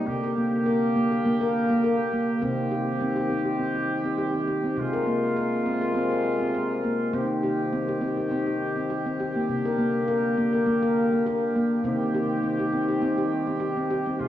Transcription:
0.00 0.23 A#3 medium
0.06 2.38 C3 medium
0.06 2.40 D3 medium
0.06 2.40 A#3 medium
0.06 2.40 G4 medium
0.24 0.37 A#4 medium
0.37 0.66 A#3 medium
0.66 0.96 A#4 medium
0.96 1.12 A#3 medium
1.12 1.25 A#4 medium
1.25 1.41 A#3 medium
1.41 1.70 A#4 medium
1.70 1.84 A#3 medium
1.84 2.13 A#4 medium
2.13 2.43 A#3 medium
2.42 4.73 C3 medium
2.42 4.75 D#3 medium
2.42 2.72 C4 medium
2.42 4.75 C4 medium
2.42 4.75 G4 medium
2.71 3.01 G4 medium
3.00 3.17 C4 medium
3.16 3.30 G4 medium
3.29 3.46 C4 medium
3.45 3.59 G4 medium
3.59 3.75 C4 medium
3.74 4.05 G4 medium
4.04 4.18 C4 medium
4.18 4.34 G4 medium
4.34 4.48 C4 medium
4.47 4.64 G4 medium
4.64 4.93 C4 medium
4.77 7.08 C3 medium
4.77 7.11 C3 medium
4.77 7.11 G#3 medium
4.77 7.11 F4 medium
4.93 5.07 A#4 medium
5.07 5.36 A#3 medium
5.36 5.66 A#4 medium
5.66 5.82 C4 medium
5.82 5.95 A#4 medium
5.95 6.11 C4 medium
6.10 6.40 A#4 medium
6.40 6.54 C4 medium
6.54 6.84 A#4 medium
6.84 7.13 A#3 medium
7.13 9.44 C3 medium
7.13 9.46 D#3 medium
7.13 7.43 C4 medium
7.13 9.46 C4 medium
7.13 11.80 G4 medium
7.43 7.72 G4 medium
7.73 7.88 C4 medium
7.89 8.02 G4 medium
8.01 8.17 C4 medium
8.17 8.31 G4 medium
8.31 8.46 C4 medium
8.46 8.76 G4 medium
8.76 8.89 C4 medium
8.90 9.05 G4 medium
9.06 9.19 C4 medium
9.20 9.35 G4 medium
9.35 9.64 A#3 medium
9.49 11.80 C3 medium
9.49 11.82 D3 medium
9.49 11.82 A#3 medium
9.65 9.78 A#4 medium
9.78 10.07 A#3 medium
10.08 10.37 A#4 medium
10.37 10.53 A#3 medium
10.53 10.66 A#4 medium
10.66 10.82 A#3 medium
10.83 11.12 A#4 medium
11.12 11.26 A#3 medium
11.26 11.55 A#4 medium
11.56 11.84 A#3 medium
11.84 14.16 C3 medium
11.84 14.17 D#3 medium
11.84 14.17 C4 medium
11.84 12.14 C4 medium
11.84 14.17 G4 medium
12.15 12.43 G4 medium
12.43 12.59 C4 medium
12.59 12.73 G4 medium
12.73 12.88 C4 medium
12.88 13.02 G4 medium
13.02 13.17 C4 medium
13.18 13.47 G4 medium
13.47 13.61 C4 medium
13.60 13.76 G4 medium
13.77 13.90 C4 medium
13.90 14.06 G4 medium
14.06 14.28 C4 medium
14.19 14.28 C3 medium
14.19 14.28 G#3 medium
14.19 14.28 F4 medium

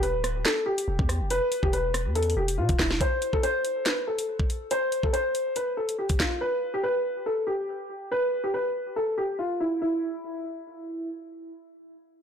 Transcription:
0.00 0.16 E1 loud
0.00 0.43 B4 medium
0.00 closed hi-hat medium
0.14 0.44 D1 loud
0.24 cross-stick medium
0.24 closed hi-hat medium
0.45 0.63 A4 medium
0.45 snare loud
0.45 clap medium
0.45 closed hi-hat medium
0.66 1.26 G4 medium
0.78 closed hi-hat medium
0.88 0.98 E1 loud
0.99 1.22 E2 loud
0.99 kick loud
1.09 cross-stick medium
1.09 closed hi-hat medium
1.20 1.41 F1 loud
1.30 1.61 B4 loud
1.30 closed hi-hat medium
1.52 closed hi-hat medium
1.63 2.07 E1 loud
1.63 1.71 G4 medium
1.63 kick medium
1.73 2.13 B4 medium
1.73 closed hi-hat medium
1.94 cross-stick loud
1.94 closed hi-hat medium
2.06 2.35 E2 loud
2.15 2.33 A4 medium
2.15 closed hi-hat medium
2.23 closed hi-hat medium
2.30 closed hi-hat soft
2.37 2.60 E1 loud
2.37 2.55 G4 medium
2.48 closed hi-hat medium
2.58 2.69 B2 loud
2.58 2.76 F4 medium
2.69 2.79 E1 loud
2.69 kick loud
2.69 closed hi-hat medium
2.79 3.00 E1 loud
2.79 2.97 E4 medium
2.79 kick medium
2.79 cross-stick medium
2.79 snare loud
2.79 clap medium
2.79 open hi-hat medium
2.91 snare medium
3.01 3.31 C5 medium
3.01 kick loud
3.01 closed hi-hat medium
3.22 closed hi-hat medium
3.33 3.42 A4 medium
3.33 kick medium
3.43 3.83 C5 medium
3.43 closed hi-hat medium
3.65 closed hi-hat medium
3.86 4.04 B4 medium
3.86 snare loud
3.86 clap medium
3.86 closed hi-hat medium
4.07 4.67 A4 medium
4.19 closed hi-hat medium
4.40 kick loud
4.50 closed hi-hat medium
4.71 5.02 C5 medium
4.71 closed hi-hat medium
4.92 closed hi-hat medium
5.03 5.12 A4 medium
5.03 kick medium
5.13 5.53 C5 medium
5.13 closed hi-hat medium
5.35 closed hi-hat medium
5.56 5.74 B4 medium
5.56 closed hi-hat medium
5.77 5.95 A4 medium
5.89 closed hi-hat medium
5.99 6.16 G4 medium
6.09 kick loud
6.09 closed hi-hat medium
6.19 6.38 F4 medium
6.19 kick medium
6.19 snare loud
6.19 clap medium
6.19 closed hi-hat medium
6.41 6.72 B4 loud
6.74 6.82 G4 medium
6.83 7.24 B4 medium
7.26 7.44 A4 medium
7.47 8.07 G4 medium
8.12 8.42 B4 loud
8.44 8.52 G4 medium
8.54 8.94 B4 medium
8.96 9.14 A4 medium
9.18 9.36 G4 medium
9.39 9.57 F4 medium
9.60 9.78 E4 medium
9.82 11.05 E4 medium

